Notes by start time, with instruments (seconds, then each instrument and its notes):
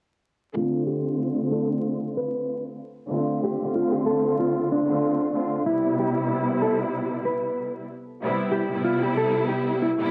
0.54 string section D3 A3 C4 F4, clean electric guitar F4
0.87 clean electric guitar G4
1.52 clean electric guitar A4
2.17 clean electric guitar B4
3.10 string section D3 A3 C4 F4
3.44 clean electric guitar G4
3.61 string section D3 A3 C4 F4
3.75 clean electric guitar F4
3.92 clean electric guitar G4
4.06 clean electric guitar A4
4.40 clean electric guitar F4
4.72 clean electric guitar D4
4.86 string section D3 A3 C4 F4
5.33 string section D3 A3 C4 F4
5.66 string section C3 G3 B3 E4, clean electric guitar E4
5.99 clean electric guitar G4
6.62 clean electric guitar A4
7.25 clean electric guitar B4
8.22 string section C3 G3 B3 E4
8.52 clean electric guitar G4
8.71 string section C3 G3 B3 E4
8.84 clean electric guitar F4
9.03 clean electric guitar G4
9.17 clean electric guitar A4
9.49 clean electric guitar G4
9.82 clean electric guitar E4
9.97 string section C3 G3 B3 E4